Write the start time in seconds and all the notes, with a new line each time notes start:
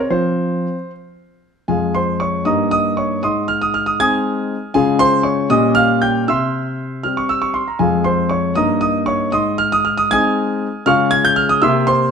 Already playing: C#5
0.10 F3 C4 F4 C5
1.68 F2 G#3 F4 G#4 F5 G#5
1.95 C5 C6
2.20 C#5 C#6
2.45 G2 A#3 D#4 G4 D#5 A#5 D#6
2.71 D#5 D#6
2.97 C#5 C#6
3.23 G#2 D#5 C6 D#6
3.48 F6
3.62 D#6
3.74 F6
3.86 D#6
4.00 G#3 C4 D#4 G#5 D#6 G#6
4.74 C#3 G#3 C#4 F4 G#4 F5 G#5
4.99 C5 C6
5.23 C#5 C#6
5.50 A#2 G3 C#4 G4 D#5 D#6
5.75 F5 F6
6.02 G5 G6
6.28 C3 E5 C6 E6
7.03 G3 C4 G4 F6
7.17 C#6
7.29 E6
7.42 C#6
7.54 C6
7.68 A#5
7.79 F2 G#3 C4 F4 G#4 F5 G#5
8.04 C5 C6
8.29 C#5 C#6
8.55 G2 A#3 D#4 D#5 A#5 D#6
8.81 D#5 D#6
9.06 C#5 C#6
9.32 G#2 D#5 C6 D#6
9.58 F6
9.72 D#6
9.85 F6
9.97 D#6
10.11 G#3 C4 D#4 G#5 D#6 G#6
10.86 C#3 G#3 C#4 F4 F5 C#6 F6
11.11 G#6
11.25 G6
11.36 F6
11.49 D#6
11.62 C3 A#3 C4 G4 E5 C6 E6
11.87 C5 C6